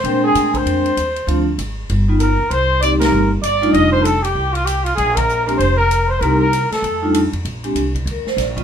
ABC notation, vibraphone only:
X:1
M:4/4
L:1/8
Q:"Swing" 1/4=194
K:Bb
V:1 name="Vibraphone"
[_A,CDBg]4- [A,CDBg] z3 | [F,A,CDF] z4 [G,^A,=B,^DF] z2 | z2 [G,B,CEG]3 z2 [G,A,DEF]- | [G,A,DEF]2 z6 |
z3 [_A,B,CDG] z4 | [G,B,CEG] z4 [G,A,DEF] z2 | z [_A,CDG] z2 B c d [G,C_DFe] |]